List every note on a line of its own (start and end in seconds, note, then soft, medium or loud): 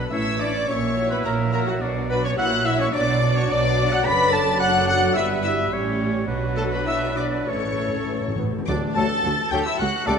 0.00 0.11 F#3 medium
0.00 0.12 B3 medium
0.00 0.11 D4 medium
0.00 0.12 B5 medium
0.11 0.62 A1 medium
0.11 0.62 A2 medium
0.11 0.69 E3 medium
0.11 0.39 C#4 medium
0.11 0.39 E4 medium
0.11 0.40 E4 medium
0.11 0.68 C#5 medium
0.11 0.23 E5 medium
0.11 0.42 E5 medium
0.11 0.40 E5 medium
0.11 0.39 E6 loud
0.39 0.68 C#4 medium
0.39 0.52 D4 medium
0.39 0.68 E4 medium
0.39 0.52 D5 medium
0.39 0.70 D5 medium
0.39 0.68 D5 medium
0.39 0.69 D5 medium
0.39 0.68 D6 medium
0.67 1.19 A#1 medium
0.67 1.18 A#2 medium
0.67 1.25 F#3 medium
0.67 1.10 C#4 medium
0.67 1.11 C#5 medium
0.67 1.14 C#5 medium
0.67 1.13 C#5 medium
0.67 1.10 C#5 medium
0.67 1.25 E5 medium
0.67 1.11 C#6 loud
0.97 1.52 E4 medium
0.97 1.52 F#4 medium
1.10 1.25 B3 medium
1.10 1.27 B4 medium
1.10 1.26 B4 medium
1.10 1.27 B4 medium
1.10 1.17 B5 medium
1.24 1.75 A#1 medium
1.24 1.75 A#2 medium
1.24 1.81 F#3 medium
1.24 1.52 A#3 medium
1.24 1.53 A#4 medium
1.24 1.52 A#4 medium
1.24 1.33 A#4 medium
1.24 1.53 A#4 medium
1.24 1.83 E5 medium
1.24 1.32 A#5 loud
1.53 1.59 A#3 medium
1.53 1.81 E4 medium
1.53 1.80 F#4 medium
1.53 1.70 A#4 medium
1.53 1.67 A#4 medium
1.53 1.60 A#4 medium
1.53 1.68 A#4 medium
1.53 1.58 A#5 medium
1.67 1.81 F#3 medium
1.67 1.82 F#4 medium
1.67 1.73 F#5 medium
1.81 2.31 B1 medium
1.81 2.31 B2 medium
1.81 2.37 F#3 medium
1.81 2.09 D4 medium
1.81 2.09 F#4 medium
1.81 2.37 D5 medium
2.09 2.23 B3 medium
2.09 2.37 D4 medium
2.09 2.37 F#4 medium
2.09 2.16 B4 medium
2.09 2.23 B4 medium
2.09 2.17 B4 medium
2.09 2.23 B5 loud
2.24 2.38 C#4 medium
2.24 2.38 C#5 medium
2.24 2.31 C#5 medium
2.24 2.38 C#5 medium
2.24 2.32 C#5 medium
2.24 2.30 C#6 loud
2.37 2.87 A#1 medium
2.37 2.87 A#2 medium
2.37 2.93 F#3 medium
2.37 2.65 E4 medium
2.37 2.50 F#4 medium
2.37 2.65 F#4 medium
2.37 2.95 E5 medium
2.37 2.45 F#5 loud
2.37 2.67 F#5 loud
2.37 2.51 F#5 medium
2.37 2.66 F#5 loud
2.37 2.66 F#6 loud
2.66 2.72 E4 medium
2.66 2.94 E4 medium
2.66 2.93 F#4 medium
2.66 2.72 E5 medium
2.66 2.82 E5 loud
2.66 2.73 E5 loud
2.66 2.80 E5 loud
2.66 2.80 E6 loud
2.78 2.85 C#4 medium
2.78 2.93 C#5 loud
2.78 2.87 C#5 medium
2.78 2.96 C#5 medium
2.78 2.94 C#5 medium
2.78 2.86 C#6 loud
2.92 3.43 B1 medium
2.92 3.44 B2 medium
2.92 3.49 F#3 medium
2.92 3.34 D4 medium
2.92 3.21 D4 medium
2.92 3.21 F#4 medium
2.92 3.35 D5 loud
2.92 3.49 D5 medium
2.92 3.37 D5 loud
2.92 3.36 D5 medium
2.92 3.38 D5 loud
2.92 3.36 D6 loud
3.22 3.77 D4 medium
3.22 3.77 F#4 medium
3.34 3.41 C#4 medium
3.34 3.52 C#5 medium
3.34 3.50 C#5 loud
3.34 3.50 C#5 medium
3.34 3.43 C#5 medium
3.34 3.51 C#6 loud
3.48 3.99 B1 medium
3.48 3.99 B2 loud
3.48 4.05 F#3 medium
3.48 3.90 D4 loud
3.48 4.04 D5 medium
3.48 3.91 D5 loud
3.48 3.94 D5 loud
3.48 3.92 D5 loud
3.48 3.92 D6 loud
3.78 4.05 D4 medium
3.78 4.05 F#4 medium
3.90 4.05 F#4 loud
3.90 4.04 F#5 loud
3.90 4.05 F#5 loud
3.90 4.06 F#5 loud
3.90 4.08 F#5 loud
3.90 4.06 F#6 loud
4.04 5.12 F#1 medium
4.04 5.13 F#2 medium
4.04 4.59 F#3 medium
4.04 4.57 D4 medium
4.04 4.57 A4 medium
4.04 4.33 B4 loud
4.04 4.60 D5 medium
4.04 4.32 B5 loud
4.04 4.35 B5 loud
4.04 4.34 B5 loud
4.04 4.33 B6 loud
4.32 4.61 A4 loud
4.32 4.39 A5 loud
4.32 4.45 A5 medium
4.32 4.61 A5 loud
4.32 4.61 A5 medium
4.32 4.60 A6 loud
4.59 5.18 F#3 medium
4.59 5.16 D4 medium
4.59 4.88 F#4 loud
4.59 5.16 A4 medium
4.59 5.18 D5 loud
4.59 4.87 F#5 loud
4.59 4.86 F#5 loud
4.59 4.88 F#5 loud
4.59 4.87 F#6 loud
4.87 5.17 F#4 loud
4.87 5.15 F#5 loud
4.87 4.94 F#5 loud
4.87 5.01 F#5 loud
4.87 5.16 F#5 loud
4.87 5.16 F#6 loud
5.13 5.72 G1 medium
5.13 5.72 G2 medium
5.13 5.72 G3 medium
5.13 5.72 B3 medium
5.13 5.29 E4 medium
5.13 5.71 G4 medium
5.13 5.75 B4 medium
5.13 5.43 E5 loud
5.13 5.43 E5 medium
5.13 5.29 E5 medium
5.13 5.44 E5 medium
5.13 5.23 E6 loud
5.43 5.57 E4 medium
5.43 5.72 E5 medium
5.43 5.72 E5 loud
5.43 5.54 E5 medium
5.43 5.51 E6 loud
5.72 6.27 A1 medium
5.72 6.27 A2 medium
5.72 6.27 G3 medium
5.72 6.29 C#4 medium
5.72 6.28 G4 medium
5.72 6.27 C#5 medium
6.28 7.48 B1 medium
6.28 7.48 B2 medium
6.28 7.49 F#3 medium
6.28 7.46 D4 medium
6.28 7.45 F#4 medium
6.28 7.51 B4 medium
6.56 6.63 A3 medium
6.56 6.64 A4 medium
6.56 6.71 A4 medium
6.56 6.72 A4 medium
6.56 6.63 A5 loud
6.72 6.78 B3 medium
6.72 6.79 B4 medium
6.72 6.89 B4 medium
6.72 6.87 B5 medium
6.85 7.16 E4 medium
6.85 7.19 E5 medium
6.85 7.17 E5 medium
6.85 7.19 E5 medium
6.85 7.01 E5 medium
6.85 6.95 E6 loud
7.16 7.47 D4 medium
7.16 7.50 D5 medium
7.16 7.49 D5 medium
7.16 7.26 D5 medium
7.16 7.32 D5 medium
7.16 7.24 D6 medium
7.47 8.46 A1 medium
7.47 8.46 A2 medium
7.47 7.55 A2 soft
7.47 7.92 E3 medium
7.47 8.37 C#4 medium
7.47 8.48 E4 medium
7.47 8.48 A4 medium
7.47 8.39 A4 medium
7.47 8.36 C#5 medium
7.47 8.39 C#5 medium
7.47 8.37 C#5 medium
7.47 8.39 C#5 medium
7.47 8.37 C#6 medium
7.56 7.63 A2 soft
7.64 7.71 A2 soft
7.73 7.80 A2 soft
7.81 7.87 A2 soft
7.88 7.95 A2 medium
7.96 8.03 A2 medium
8.04 8.11 A2 medium
8.08 8.18 A2 medium
8.08 8.22 E3 medium
8.19 8.26 A2 medium
8.19 8.38 F#3 medium
8.28 8.34 A2 medium
8.35 8.42 A2 medium
8.35 8.52 B3 medium
8.43 8.50 A2 medium
8.51 8.57 A2 medium
8.58 8.66 A2 loud
8.67 8.76 D2 medium
8.67 9.48 D3 loud
8.67 8.76 F#3 medium
8.67 8.95 D4 medium
8.67 8.76 F#4 medium
8.67 8.76 D5 medium
8.67 8.81 D5 medium
8.67 8.75 D6 medium
8.95 9.04 D2 medium
8.95 9.05 D2 medium
8.95 9.06 F#3 medium
8.95 9.05 F#3 medium
8.95 9.06 A3 medium
8.95 9.06 F#4 medium
8.95 9.05 F#4 medium
8.95 9.51 A4 loud
8.95 9.07 A4 medium
8.95 9.09 A5 medium
8.95 9.52 A5 medium
8.95 9.51 A5 loud
8.95 9.51 A6 loud
9.24 9.32 D2 medium
9.24 9.32 F#3 medium
9.24 9.33 F#4 medium
9.51 9.59 D2 medium
9.51 9.60 D2 medium
9.51 9.60 F#3 medium
9.51 9.62 F#3 medium
9.51 9.61 A3 medium
9.51 9.61 F#4 medium
9.51 9.60 F#4 medium
9.51 9.68 G4 medium
9.51 9.63 A4 medium
9.51 9.65 G5 medium
9.51 9.57 G5 medium
9.51 9.65 A5 medium
9.51 9.65 G6 loud
9.65 9.82 E4 medium
9.65 9.72 E5 medium
9.65 9.80 E5 medium
9.65 9.80 E6 loud
9.79 9.88 C#2 medium
9.79 9.89 A3 medium
9.79 10.08 F#4 medium
9.79 9.89 G4 medium
9.79 10.08 F#5 medium
9.79 10.07 F#6 loud
10.06 10.15 C#2 medium
10.06 10.16 C#2 medium
10.06 10.18 G3 medium
10.06 10.17 A3 medium
10.06 10.16 A3 medium
10.06 10.15 D4 medium
10.06 10.17 G4 medium
10.06 10.16 G4 medium
10.06 10.17 A4 medium
10.06 10.19 D5 loud
10.06 10.13 D5 medium
10.06 10.19 A5 medium
10.06 10.13 D6 loud